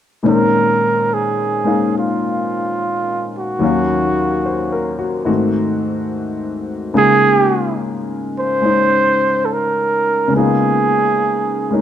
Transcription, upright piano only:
0.23 A#2 D#3 G#3 C4 C#4 D#4
1.64 G#3 A#3 C#4 D#4 F5
3.59 D#2 D#3 F#3 C#4
3.64 F5
4.46 C5
4.72 A#4
4.99 F#4
5.25 G#2 D#3 A3 C4 F#4
6.94 C#3 G#3 A#3 D#4 F4
8.62 G#3 C#4 D#4
10.28 C#3 G#3
10.32 A#3 B3
10.36 D#4 F4
11.71 G#3 A#3 C#4 D#4

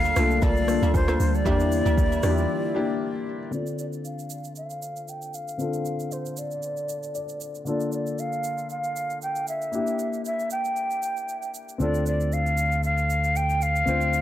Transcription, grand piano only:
Already playing: A#3 D4 F4 A4
0.16 A3 D4 F4 A4
0.22 A#3
0.67 A#3 D4 F4 A4
1.45 A#3 D4 E4 G4
2.22 A#3 D4 E4 F4
2.30 G4
2.74 A#3 D4 E4 G4
3.51 D3 C4 D4 F4 A4
5.58 D3 C4 D4 F4 A4
7.15 D5
7.65 D3 A#3 D4 F4 A4
9.72 A#3 D4 E4 G4
11.78 C4 D4 F4 A4
13.85 C4 D4 F4 C5

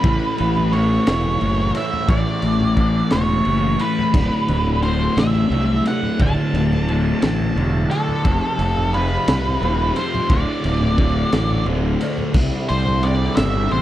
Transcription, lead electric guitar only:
Already playing: B4
0.72 C#5
1.77 E5
2.10 D5
3.12 C#5
3.81 B4
4.83 C5
5.19 E5
5.88 F#5
6.22 A5
7.91 A4
8.94 B4
9.97 C5
10.32 D5
12.69 C5
13.03 D5
13.36 E5
13.72 C5

